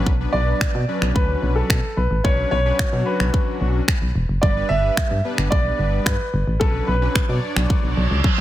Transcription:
Already playing: F#3 C#4 D4 B4
0.06 B1, kick
0.20 F#3 B3 D4 B4
0.33 B1 D5
0.61 B2, finger snap, kick
0.75 B2
0.88 F#3 C#4 D4 B4
1.02 B1, finger snap
1.15 D2 B4, kick
1.43 B1
1.56 A4
1.70 B2, finger snap, kick
1.97 B1 B4
2.11 A1
2.24 B1 F#3 C#4 D4 B4 C#5, kick
2.51 B1 C#5
2.65 F#3 C#4 D4 B4
2.79 B2, finger snap, kick
2.93 B2 F#3 C#4 D4 F#4
3.06 B4
3.20 B1, finger snap
3.34 kick
3.61 B1
3.88 finger snap, kick
4.02 B1
4.15 E1
4.29 F#1
4.42 G1 G3 B3 D4 B4 D5, kick
4.56 G3 B3 D4 B4
4.69 G1 E5
4.97 G2, finger snap, kick
5.11 G2
5.24 G3 B3 D4 B4
5.38 G1, finger snap
5.50 B1 D5, kick
5.79 G1
6.05 G2 B4, finger snap, kick
6.34 G1
6.47 A1
6.60 B1 F#3 C#4 D4 A4 B4, kick
6.87 B1 B4
7.02 F#3 C#4 D4 B4
7.15 B2, finger snap, kick
7.29 B2 F#3 D4 C#5 D5
7.56 B1, finger snap
7.70 kick, reverse cymbal
7.84 B1
7.97 B1
8.11 C#2
8.24 kick, high tom

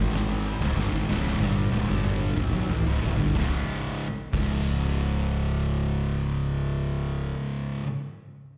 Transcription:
Already playing: G#1 G#2 D#3
0.00 G#3
0.13 snare, crash
0.45 crash
0.61 C#1 C#2 G#2
0.76 G1 G2 D3, snare
0.92 G#1 G#2 D#3
1.08 C#1 C#2 G#2 C#3, snare
1.27 snare
1.40 G1 G2 D3 G3, high tom
1.72 C#1 C#2 G#2, high tom
1.88 G1 G2 D3 G3, mid tom
2.04 mid tom
2.36 G#1 G#2 D#3, mid tom
2.52 B1 B2 F#3, mid tom
2.69 A1 A2 E3, mid tom
2.85 C#1 C#2 G#2
3.01 D1 D2 A2, floor tom
3.18 G1 G2 D3, floor tom
3.34 C#1 C#2 G#2 C#3, kick
3.39 snare
4.33 C#1 C#2 G#2, kick, crash
4.37 C#3

